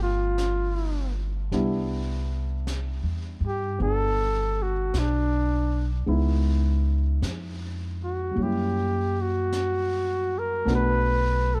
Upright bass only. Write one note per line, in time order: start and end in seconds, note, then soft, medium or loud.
0.00 1.48 G1 medium
1.52 3.00 C2 medium
3.03 3.39 E2 soft
3.41 3.76 G2 medium
3.80 4.90 G1 medium
4.94 6.04 B1 medium
6.07 7.18 C#2 medium
7.22 8.33 F2 medium
8.36 10.63 F#2 medium
10.66 11.60 B1 medium